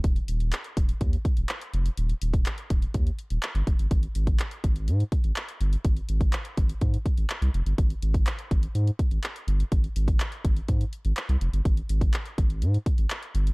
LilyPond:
<<
  \new Staff \with { instrumentName = "Sub bass" } { \clef bass \time 4/4 \key aes \major \tempo 4 = 124 ees,,8 ees,,8. r16 ees,,8 ees,8 r16 ees,,16 r8 f,,8 | ees,,8 ees,,8. r16 ees,,8 ees,8 r16 ees,,16 r16 g,,16 f,,16 g,,16 | aes,,8 aes,,8. r16 aes,,8 aes,8 r16 aes,,16 r8 g,,8 | aes,,8 aes,,8. r16 aes,,8 aes,8 r16 aes,,16 r16 c,16 f,,16 g,,16 |
aes,,8 aes,,8. r16 aes,,8 aes,8 r16 aes,,16 r8 g,,8 | aes,,8 aes,,8. r16 aes,,8 aes,8 r16 aes,,16 r16 c,16 f,,16 g,,16 | aes,,8 aes,,8. r16 aes,,8 aes,8 r16 aes,,16 r8 g,,8 | }
  \new DrumStaff \with { instrumentName = "Drums" } \drummode { \time 4/4 <hh bd>16 hh16 hh16 hh16 <hc hh>16 hh16 <hh bd>16 hh16 <hh bd>16 hh16 <hh bd>16 hh16 <hc hh>16 hh16 hh16 hh16 | hh16 hh16 hh16 <hh bd>16 <hc hh>16 hh16 <hh bd>16 hh16 <hh bd>16 hh16 hh16 hh16 <hc hh>16 hh16 <hh bd>16 hh16 | <hh bd>16 hh16 hh16 <hh bd>16 <hc hh>16 hh16 <hh bd>16 hh16 hh16 hh16 <hh bd>16 hh16 <hc hh>16 hh16 hh16 hh16 | <hh bd>16 hh16 hh16 <hh bd>16 <hc hh>16 hh16 <hh bd>16 hh16 <hh bd>16 hh16 <hh bd>16 hh16 <hc hh>16 hh16 hh16 hh16 |
<hh bd>16 hh16 hh16 <hh bd>16 <hc hh>16 hh16 <hh bd>16 hh16 hh16 hh16 <hh bd>16 hh16 <hc hh>16 hh16 hh16 hh16 | <hh bd>16 hh16 hh16 <hh bd>16 <hc hh>16 hh16 <hh bd>16 hh16 <hh bd>16 hh16 hh16 hh16 <hc hh>16 hh16 hh16 hh16 | <hh bd>16 hh16 hh16 <hh bd>16 <hc hh>16 hh16 <hh bd>16 hh16 hh16 hh16 <hh bd>16 hh16 <hc hh>16 hh16 hh16 hh16 | }
>>